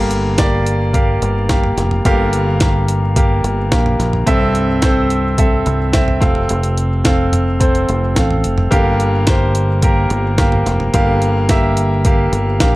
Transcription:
0.00 1.18 G1 loud
0.00 0.62 G2 medium
0.00 0.62 D3 medium
0.00 0.22 A#3 loud
0.00 0.23 G4 medium
0.00 0.23 F5 medium
0.11 closed hi-hat medium
0.38 0.78 A#3 medium
0.38 0.78 G4 medium
0.38 0.79 D5 medium
0.38 kick loud
0.38 snare loud
0.38 closed hi-hat loud
0.67 closed hi-hat medium
0.93 1.33 A#3 medium
0.93 1.34 G4 medium
0.93 1.34 F5 medium
0.93 kick loud
0.93 closed hi-hat medium
1.22 1.74 G1 medium
1.22 closed hi-hat medium
1.49 1.89 A#3 medium
1.49 1.90 G4 medium
1.49 1.90 F5 medium
1.49 kick loud
1.49 snare loud
1.49 closed hi-hat medium
1.63 floor tom medium
1.77 2.03 F1 medium
1.77 snare soft
1.77 closed hi-hat medium
1.91 floor tom medium
2.05 3.40 G1 loud
2.05 2.85 G2 medium
2.05 2.85 D3 medium
2.05 2.45 A#3 medium
2.05 2.45 G4 medium
2.05 2.45 F5 loud
2.05 kick loud
2.05 closed hi-hat medium
2.33 closed hi-hat medium
2.60 3.00 A#3 medium
2.60 3.01 G4 medium
2.60 3.01 F5 medium
2.60 kick loud
2.60 snare loud
2.60 closed hi-hat medium
2.88 closed hi-hat medium
3.16 3.56 A#3 medium
3.16 3.56 G4 medium
3.16 3.56 F5 medium
3.16 kick loud
3.16 closed hi-hat medium
3.44 3.70 G1 medium
3.44 closed hi-hat medium
3.71 3.98 A#1 medium
3.71 4.11 A#3 medium
3.71 4.11 G4 medium
3.71 4.12 F5 medium
3.71 kick loud
3.71 snare loud
3.71 closed hi-hat medium
3.86 floor tom medium
3.99 4.25 A#1 medium
3.99 snare soft
3.99 closed hi-hat medium
4.13 floor tom medium
4.26 5.62 C2 loud
4.26 5.07 G2 medium
4.26 4.67 C4 loud
4.26 4.67 A4 medium
4.26 4.67 E5 loud
4.26 kick loud
4.26 closed hi-hat medium
4.55 closed hi-hat medium
4.82 5.22 C4 medium
4.82 5.23 A4 medium
4.82 5.23 C5 medium
4.82 kick loud
4.82 snare loud
4.82 closed hi-hat medium
5.10 closed hi-hat medium
5.38 5.78 C4 medium
5.38 5.78 A4 medium
5.38 5.79 E5 medium
5.38 kick loud
5.38 closed hi-hat medium
5.66 6.18 C2 loud
5.66 closed hi-hat medium
5.93 6.19 C4 medium
5.93 6.20 A4 medium
5.93 6.22 E5 medium
5.93 kick loud
5.93 snare loud
5.93 closed hi-hat medium
6.08 floor tom medium
6.20 6.48 F1 loud
6.20 7.01 C3 medium
6.20 6.88 C4 medium
6.20 6.88 A4 medium
6.20 6.89 F5 medium
6.20 kick loud
6.20 snare soft
6.20 closed hi-hat medium
6.35 floor tom medium
6.49 7.85 F1 loud
6.49 closed hi-hat medium
6.63 closed hi-hat medium
6.78 closed hi-hat medium
7.04 7.45 C4 medium
7.04 7.45 A4 medium
7.04 7.45 F5 medium
7.04 kick loud
7.04 snare loud
7.04 closed hi-hat medium
7.33 closed hi-hat medium
7.33 floor tom medium
7.60 8.00 C4 medium
7.60 8.00 A4 medium
7.60 8.01 C5 medium
7.60 kick loud
7.60 closed hi-hat medium
7.75 closed hi-hat soft
7.89 8.15 F1 loud
7.89 closed hi-hat medium
8.15 8.42 A1 medium
8.15 8.56 C4 medium
8.15 8.56 A4 medium
8.15 8.56 F5 medium
8.15 kick medium
8.15 snare loud
8.15 closed hi-hat medium
8.31 floor tom medium
8.44 8.70 F1 medium
8.44 closed hi-hat medium
8.58 floor tom medium
8.71 10.07 G1 medium
8.71 9.51 G2 medium
8.71 9.51 D3 medium
8.71 9.11 A#3 loud
8.71 9.11 G4 medium
8.71 9.11 F5 loud
8.71 kick loud
8.71 closed hi-hat medium
9.00 closed hi-hat medium
9.27 9.67 A#3 medium
9.27 9.67 G4 medium
9.27 9.67 C5 medium
9.27 kick loud
9.27 snare loud
9.27 closed hi-hat medium
9.55 closed hi-hat medium
9.82 10.23 A#3 medium
9.82 10.23 G4 medium
9.82 10.23 A#4 medium
9.82 kick loud
9.82 closed hi-hat medium
10.10 10.62 G1 loud
10.10 closed hi-hat medium
10.38 10.78 A#3 medium
10.38 10.78 G4 medium
10.38 10.78 F5 medium
10.38 kick loud
10.38 snare loud
10.38 closed hi-hat medium
10.52 floor tom medium
10.66 10.92 F1 medium
10.66 snare soft
10.66 closed hi-hat medium
10.80 floor tom medium
10.94 12.29 G1 loud
10.94 11.73 G2 medium
10.94 11.73 D3 medium
10.94 11.34 A#3 loud
10.94 11.34 G4 medium
10.94 11.34 F5 loud
10.94 kick loud
10.94 closed hi-hat medium
11.22 closed hi-hat medium
11.49 11.89 A#3 medium
11.49 11.89 G4 medium
11.49 11.90 E5 medium
11.49 kick loud
11.49 snare loud
11.49 closed hi-hat loud
11.77 closed hi-hat medium
12.05 12.45 A#3 medium
12.05 12.45 G4 medium
12.05 12.45 F5 medium
12.05 kick loud
12.05 closed hi-hat medium
12.33 12.58 G1 loud
12.33 closed hi-hat medium
12.60 12.76 A#1 medium
12.60 12.76 A#3 medium
12.60 12.76 G4 medium
12.60 12.76 F5 medium
12.60 kick loud
12.60 snare loud
12.60 closed hi-hat medium

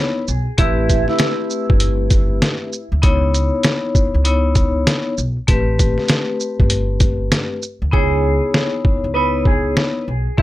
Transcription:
0.00 0.21 B3 loud
0.00 0.22 D#4 medium
0.00 0.22 E4 medium
0.00 0.23 C#5 loud
0.28 0.45 B1 medium
0.28 shaker medium
0.58 1.04 A1 loud
0.58 2.70 A3 medium
0.58 2.70 C4 medium
0.58 1.05 E4 loud
0.58 2.71 G4 medium
0.58 2.71 B4 loud
0.58 kick loud
0.58 closed hi-hat medium
0.89 kick medium
0.89 closed hi-hat medium
0.89 shaker medium
1.08 3.00 E4 medium
1.08 snare soft
1.19 snare loud
1.19 closed hi-hat medium
1.50 shaker medium
1.70 2.39 G1 medium
1.70 kick loud
1.80 closed hi-hat loud
2.10 kick loud
2.10 closed hi-hat medium
2.10 shaker medium
2.42 snare loud
2.42 closed hi-hat medium
2.73 shaker medium
2.92 3.02 D2 medium
3.02 3.49 C#2 loud
3.02 4.18 B3 medium
3.02 4.18 D#4 medium
3.02 4.18 E4 medium
3.02 4.19 C#5 loud
3.02 kick loud
3.02 closed hi-hat medium
3.34 closed hi-hat medium
3.34 shaker medium
3.63 snare loud
3.63 closed hi-hat medium
3.95 kick loud
3.95 shaker medium
4.14 4.84 C#2 medium
4.25 5.11 B3 loud
4.25 5.12 D#4 medium
4.25 5.12 E4 medium
4.25 5.12 C#5 loud
4.25 closed hi-hat loud
4.55 kick loud
4.55 closed hi-hat medium
4.55 shaker medium
4.87 snare loud
4.87 closed hi-hat medium
5.18 5.35 B1 medium
5.18 shaker medium
5.47 5.94 A1 loud
5.47 7.60 A3 medium
5.47 7.60 C4 medium
5.47 7.61 G4 medium
5.47 7.61 B4 loud
5.47 kick loud
5.47 closed hi-hat medium
5.79 kick loud
5.79 closed hi-hat medium
5.79 shaker medium
5.98 snare soft
6.08 snare loud
6.08 closed hi-hat medium
6.40 shaker medium
6.60 7.29 G1 medium
6.60 kick loud
6.70 closed hi-hat loud
7.00 kick loud
7.00 closed hi-hat medium
7.00 shaker medium
7.32 snare loud
7.32 closed hi-hat medium
7.62 shaker medium
7.82 7.92 D2 medium
7.92 8.39 C#2 loud
7.92 9.07 B3 medium
7.92 9.08 D#4 medium
7.92 9.08 E4 medium
7.92 8.69 G#4 medium
7.92 9.08 C#5 loud
7.92 kick loud
8.54 snare loud
8.85 kick medium
9.04 9.73 C#2 medium
9.14 10.01 B3 loud
9.14 10.02 D#4 medium
9.14 10.02 E4 medium
9.14 9.42 B4 medium
9.14 10.02 C#5 loud
9.45 9.74 G#4 medium
9.45 kick loud
9.77 snare loud
10.08 10.25 B1 medium
10.37 10.42 A1 loud
10.37 10.42 A3 medium
10.37 10.42 C4 medium
10.37 10.42 E4 loud
10.37 10.42 G4 medium
10.37 kick loud

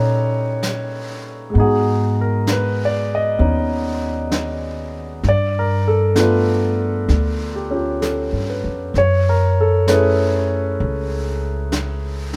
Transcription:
0.00 1.51 A#2 medium
0.00 1.55 A#2 soft
0.00 1.54 G3 soft
0.00 1.55 C#4 soft
0.00 1.56 D#4 soft
0.00 1.57 E4 soft
0.00 1.57 A4 medium
0.00 1.57 A#4 medium
0.00 1.57 B4 medium
0.00 0.30 C#5 medium
0.63 brush sweep soft
0.63 snare soft
0.63 hi-hat pedal soft
1.50 5.21 G#3 soft
1.50 3.37 B3 soft
1.55 3.35 G#2 medium
1.55 3.40 D#4 soft
1.55 brush sweep soft
1.60 5.27 F#4 soft
1.60 2.15 G#4 medium
2.21 2.49 A#4 medium
2.47 brush sweep soft
2.47 snare soft
2.47 hi-hat pedal medium
2.52 2.80 B4 medium
2.85 3.11 D5 medium
3.15 4.00 D#5 medium
3.39 5.20 D#2 medium
3.39 5.23 B3 soft
3.39 5.24 C#4 soft
3.39 5.25 D#4 soft
3.39 brush sweep soft
4.31 brush sweep soft
4.31 snare soft
4.31 hi-hat pedal soft
5.23 7.05 G2 medium
5.23 brush sweep soft
5.23 snare soft
5.29 5.56 D5 medium
5.59 5.87 A#4 medium
5.88 6.16 A4 medium
6.15 8.95 A3 soft
6.15 8.95 B3 soft
6.15 8.95 D4 soft
6.15 7.71 F4 medium
6.15 brush sweep soft
6.15 snare soft
6.15 hi-hat pedal soft
6.19 7.06 B4 medium
7.09 8.29 D2 medium
7.09 brush sweep soft
7.09 snare soft
7.55 7.73 G4 soft
7.71 8.94 C#4 soft
7.71 8.95 F4 soft
7.71 8.96 G4 soft
8.01 8.76 A4 soft
8.01 brush sweep soft
8.01 snare soft
8.01 hi-hat pedal medium
8.33 8.62 G2 soft
8.50 9.15 B4 soft
8.64 8.93 F2 medium
8.94 10.76 F#2 medium
8.94 9.27 C#5 medium
8.94 brush sweep soft
8.94 snare soft
9.29 9.58 A#4 medium
9.61 9.89 A4 medium
9.87 12.36 A3 soft
9.87 12.36 C#4 soft
9.87 10.77 B4 medium
9.87 brush sweep soft
9.87 snare soft
9.87 hi-hat pedal medium
9.91 12.36 E4 soft
9.91 12.36 G#4 medium
10.79 12.36 C#2 medium
10.79 brush sweep soft
11.72 brush sweep soft
11.72 snare soft
11.72 hi-hat pedal soft
12.33 snare soft

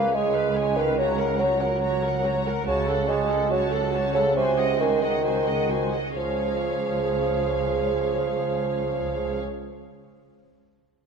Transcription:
0.00 2.62 C#2 soft
0.00 0.16 A#3 medium
0.00 0.14 B4 soft
0.00 0.14 F5 soft
0.13 0.79 G#3 soft
0.13 0.33 G#4 soft
0.13 0.33 C#5 soft
0.13 0.33 G#5 soft
0.34 0.56 B4 soft
0.34 0.56 F5 soft
0.56 0.77 G#4 soft
0.56 0.77 C#5 soft
0.56 0.77 G#5 soft
0.76 0.99 D#3 medium
0.76 0.98 B4 soft
0.76 0.97 F5 soft
0.98 1.41 C#3 soft
0.98 1.17 F#4 soft
0.98 1.18 C#5 soft
0.98 1.18 A#5 soft
1.19 1.40 A#4 soft
1.19 1.39 F#5 soft
1.39 1.60 F#3 medium
1.39 1.61 F#4 soft
1.39 1.61 C#5 soft
1.39 1.60 A#5 soft
1.61 2.43 F#3 medium
1.61 1.82 A#4 soft
1.61 1.82 F#5 soft
1.81 2.01 F#4 soft
1.81 2.02 C#5 soft
1.81 2.01 A#5 soft
2.03 2.24 A#4 soft
2.03 2.25 A#4 soft
2.03 2.24 F#5 soft
2.25 2.46 F#4 soft
2.25 2.46 C#5 soft
2.25 2.45 A#5 soft
2.46 2.67 A#4 soft
2.46 2.67 F#5 soft
2.66 3.06 C#2 soft
2.66 5.90 C#2 soft
2.66 3.10 C#3 medium
2.66 2.86 F#4 soft
2.66 2.86 C#5 soft
2.66 2.86 A5 soft
2.87 3.08 A4 soft
2.87 3.09 A4 soft
2.87 3.08 F#5 soft
3.08 3.52 G#3 medium
3.08 3.29 F#4 soft
3.08 3.30 C#5 soft
3.08 3.29 A5 soft
3.29 3.50 A4 soft
3.29 3.51 A4 soft
3.29 3.51 F#5 soft
3.50 4.13 F#3 medium
3.50 3.70 F#4 soft
3.50 3.71 C#5 soft
3.50 3.70 A5 soft
3.71 3.93 A4 soft
3.71 3.94 A4 soft
3.71 3.93 F#5 soft
3.92 4.14 F#4 soft
3.92 4.15 C#5 soft
3.92 4.15 A5 soft
4.14 4.35 C#3 medium
4.14 4.36 A4 soft
4.14 4.37 A4 soft
4.14 4.37 F#5 soft
4.36 4.79 C3 medium
4.36 4.56 F#4 soft
4.36 4.57 C5 soft
4.36 4.56 G#5 soft
4.58 4.79 G#4 soft
4.58 4.80 D#5 soft
4.58 4.80 F#5 soft
4.79 5.01 D#3 medium
4.79 5.01 F#4 soft
4.79 5.02 C5 soft
4.79 5.01 G#5 soft
5.01 5.91 D#3 soft
5.01 5.24 G#4 soft
5.01 5.24 D#5 soft
5.01 5.24 F#5 soft
5.23 5.44 F#4 soft
5.23 5.45 C5 soft
5.23 5.45 G#5 soft
5.46 5.69 G#4 soft
5.46 5.69 D#5 soft
5.46 5.70 F#5 soft
5.69 5.93 F#4 soft
5.69 5.93 C5 soft
5.69 5.93 G#5 soft
5.92 6.14 G#4 soft
5.92 6.16 D#5 soft
5.92 6.16 F#5 soft
6.16 9.39 C#2 soft
6.16 9.40 C#2 soft
6.16 9.40 F3 soft
6.16 9.39 G#4 soft
6.16 9.40 C#5 soft
6.16 9.40 F5 soft

